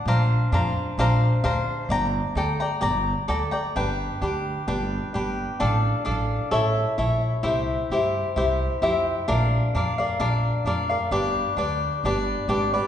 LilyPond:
<<
  \new Staff \with { instrumentName = "Cavaquinho" } { \time 2/4 \key g \minor \tempo 4 = 131 <d' c'' f'' bes''>4 <d' c'' f'' bes''>4 | <d' c'' f'' bes''>4 <d' c'' f'' bes''>4 | <d'' g'' bes''>4 <a' d'' g'' bes''>8 <d'' g'' bes''>8 | <d'' g'' bes''>4 <a' d'' g'' bes''>8 <d'' g'' bes''>8 |
\key g \dorian <d' g' b' g''>4 <d' g' b' g''>4 | <d' g' b' g''>4 <d' g' b' g''>4 | <d' a' d'' f''>4 <d' a' d'' f''>4 | <e' a' cis'' e''>4 <e' a' cis'' e''>4 |
<e' g' c'' e''>4 <e' g' c'' e''>4 | <e' g' c'' e''>4 <e' g' c'' e''>4 | <d' bes' d'' f''>4 <d' bes' d'' f''>8 <bes' d'' f''>8 | <d' bes' d'' f''>4 <d' bes' d'' f''>8 <bes' d'' f''>8 |
<d' g' b' d''>4 <d' g' b' d''>4 | <d' g' b' d''>4 <d' g' b' d''>8 <g' b' d''>8 | }
  \new Staff \with { instrumentName = "Upright bass" } { \clef bass \time 2/4 \key g \minor bes,,4 f,8 r8 | bes,,4 d,8 r8 | g,,4 d,8 r8 | g,,4 d,8 r8 |
\key g \dorian g,,4 d,4 | g,,4 g,,4 | a,,4 a,,4 | a,,4 bes,,4 |
c,4 g,4 | c,4 f,4 | bes,,4 f,4 | bes,,4 f,4 |
g,,4 d,4 | g,,4 gis,,4 | }
>>